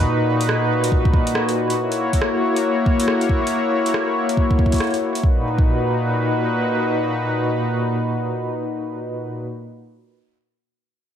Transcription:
Already playing: A#2 D#4 F#4 B4
0.02 kick
0.41 closed hi-hat
0.49 cross-stick
0.84 closed hi-hat
0.92 kick
1.05 kick
1.13 kick
1.27 closed hi-hat
1.35 cross-stick
1.49 closed hi-hat
1.70 closed hi-hat
1.78 A#3 E4 C#5
1.92 closed hi-hat
2.13 kick, closed hi-hat
2.22 cross-stick
2.56 closed hi-hat
2.86 kick
3.00 closed hi-hat
3.08 cross-stick
3.21 closed hi-hat
3.29 kick
3.47 closed hi-hat
3.86 closed hi-hat
3.94 cross-stick
4.29 closed hi-hat
4.37 kick
4.51 kick
4.59 kick
4.66 kick
4.72 kick, closed hi-hat
4.74 closed hi-hat
4.76 closed hi-hat
4.78 cross-stick, closed hi-hat
4.84 closed hi-hat
4.87 closed hi-hat
4.90 closed hi-hat
4.94 closed hi-hat
5.15 closed hi-hat
5.24 A#2 D#4 F#4 B4, kick
5.58 kick

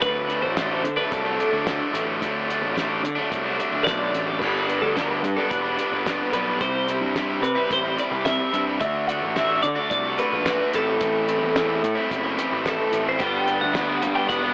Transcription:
0.01 D2 D3 F#3 A3 D4 B4, kick, closed hi-hat
0.28 D3 F#3 A3 D4, closed hi-hat
0.42 A1 C5
0.55 D3 F#3 A3 D4, kick, snare, closed hi-hat
0.69 F#3 A3 D4
0.83 D3, muted overdriven electric guitar stroke, closed hi-hat
0.96 F#3 A3 D4 B4
1.11 C2 A4, kick, closed hi-hat
1.24 F#3 A3 D4
1.37 D3 F#3 A3 D4, closed hi-hat
1.51 D2 F#3 A3 D4
1.65 D3 F#3 A3 D4, kick, snare, closed hi-hat
1.78 F#3 A3 D4
1.92 A1 D3 F#3 A3 D4, closed hi-hat
2.19 D2 D3 F#3 A3 D4, kick, closed hi-hat
2.46 D3 F#3 A3 D4
2.50 closed hi-hat
2.62 A1
2.74 D3 F#3 A3 D4, kick, snare, closed hi-hat
2.88 F#3 A3 D4
3.03 D3, muted overdriven electric guitar stroke, closed hi-hat
3.15 F#3 A3 D4
3.31 C2, kick, closed hi-hat
3.43 F#3 A3 D4
3.57 D3 F#3 A3 D4, closed hi-hat
3.71 D2 F#3 A3 D4
3.84 B1 D3 F#3 A3 D4 D5, kick, snare, closed hi-hat
3.99 F#3 A3 D4
4.13 A1 D3 F#3 A3 D4, closed hi-hat
4.28 D5
4.39 G1 G2 D3 G3 B3 B4, kick, crash
4.44 D4
4.67 D3 G3 B3 D4, closed hi-hat
4.82 D2 A4
4.95 G2 D3 G3 B3 D4 B4, kick, snare, closed hi-hat
5.09 G3 B3 D4
5.23 G2, muted overdriven electric guitar stroke, closed hi-hat
5.36 G3 B3 D4 A4
5.50 E1 B4, kick, closed hi-hat
5.63 G3 B3 D4
5.77 D3 G3 B3 D4, closed hi-hat
5.91 G1 G3 B3 D4
6.06 G2 D3 G3 B3 D4, kick, snare, closed hi-hat
6.19 G3 B3 D4
6.32 B1 D3 G3 B3 D4 B4, closed hi-hat
6.60 C2 C3 G3 C4 E4 C5, kick, closed hi-hat
6.88 C3 G3 C4 E4, closed hi-hat
7.01 G2
7.14 C3 G3 C4 E4, kick, snare, closed hi-hat
7.29 G3 C4 E4
7.42 C3 B4, muted overdriven electric guitar stroke, closed hi-hat
7.55 G3 C4 E4
7.71 A1 C5, kick, closed hi-hat
7.83 G3 C4 E4
7.96 C3 G3 C4 E4 D5, closed hi-hat
8.11 C2 G3 C4 E4
8.24 C3 G3 C4 E4 E5, kick, snare, closed hi-hat
8.38 G3 C4 E4
8.52 G2 C3 G3 C4 E4, closed hi-hat
8.79 D2 D3 A3 D4 F#4 E5, kick, closed hi-hat
9.07 D3 A3 D4 F#4 F#5, closed hi-hat
9.22 A1
9.34 D3 A3 D4 F#4 E5, kick, snare, closed hi-hat
9.48 A3 D4 F#4
9.63 D3 D5, muted overdriven electric guitar stroke, closed hi-hat
9.76 A3 D4 F#4
9.90 C2 D5, kick, closed hi-hat
10.04 A3 D4 F#4
10.17 D3 A3 D4 F#4 B4, closed hi-hat
10.31 A#1 A3 D4 F#4
10.44 D3 A3 D4 F#4, kick, snare, closed hi-hat
10.58 A3 D4 F#4
10.72 A1 A2 E3 A3 C4 E4 A4, closed hi-hat
10.98 A1 A2 E3 A3 C4 E4, kick, closed hi-hat
11.27 E3 A3 C4 E4, closed hi-hat
11.43 E2
11.54 A2 E3 A3 C4 E4, kick, snare, closed hi-hat
11.68 A3 C4 E4
11.82 A2, muted overdriven electric guitar stroke, closed hi-hat
11.95 A3 C4 E4
12.11 F#1, kick, closed hi-hat
12.23 A3 C4 E4
12.37 E3 A3 C4 E4, closed hi-hat
12.51 A1 A3 C4 E4
12.64 A2 E3 A3 C4 E4, kick, snare, closed hi-hat
12.68 A4
12.78 A3 C4 E4
12.92 A1 E3 A3 C4 E4, closed hi-hat
13.09 C5
13.19 G1 G2 D3 G3 B3 D4 G5, kick, closed hi-hat
13.47 D3 G3 B3 D4, closed hi-hat
13.61 D2 F#5
13.74 G2 D3 G3 B3 D4, kick, snare, closed hi-hat
13.88 G3 B3 D4
14.01 G2 G3, muted overdriven electric guitar stroke, closed hi-hat
14.15 G3 B3 D4 G5
14.28 E1 B3 F#5, kick, closed hi-hat
14.42 G3 B3 D4

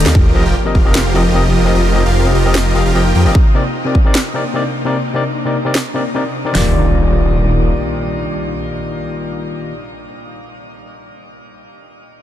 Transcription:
Already playing: D#3 A3 A#3 G4 A4 D5
0.00 closed hi-hat
0.06 D#2 D#3 D#4 G4 D5 F5, snare
0.15 F1 C3 F3 A#3 D#4 F4 G4 A#4 D#5, kick, sub drop
0.34 F3 C4 G4 A#4 D#5
0.46 F1 F3 F4 G4 A#4 G5
0.65 F3 C4 G4 A#4 D#5
0.75 F1 F3 F4 G4 A#4 F5, kick
0.85 F3 C4 G4 A#4 D#5
0.95 snare
1.14 F1 F3 C4 F4 G4 A#4 D#5
1.34 F3 C4 G4 A#4 D#5
1.65 F3 C4 G4 A#4 D#5
1.75 F1 F3 F4 G4 A#4 D#5
1.94 F3 C4 G4 A#4 D#5
2.06 F1 F3 F4 G4 A#4 F5
2.25 F3 C4 G4 A#4 D#5
2.35 F1 F3 F4 G4 A#4 D#5
2.45 F3 C4 G4 A#4 D#5
2.55 snare
2.74 F1 F3 C4 F4 G4 A#4 D#5 F5
2.86 F1 F3 F4 G4 A#4 F5
2.94 F1 F3 C4 F4 G4 A#4 D#5 G5
3.15 F2 F3 F4 G4 A#4 G5
3.25 F1 F3 C4 F4 G4 A#4 D5 D#5
3.35 D4, kick
3.54 C3 C4 D#4 A#4 D5
3.85 C3 C4 D#4 A#4 D5
3.95 kick
4.05 C3 C4 D#4 A#4 D5
4.15 snare
4.34 C3 C4 D#4 A#4 D5
4.54 C3 C4 D#4 A#4 D5
4.85 C3 C4 D#4 A#4 D5
5.14 C3 C4 D#4 A#4 D5
5.45 C3 C4 D#4 A#4 D5
5.65 C3 C4 D#4 A#4 D5
5.75 snare
5.94 C3 C4 D#4 A#4 D5
6.14 C3 C4 D#4 A#4 D5
6.45 C3 C4 D#4 A#4 D5
6.52 D#1 A#2 D#3 G3 A#3 D4 D#4 F4, snare, open hi-hat, impact
6.56 G4 D5

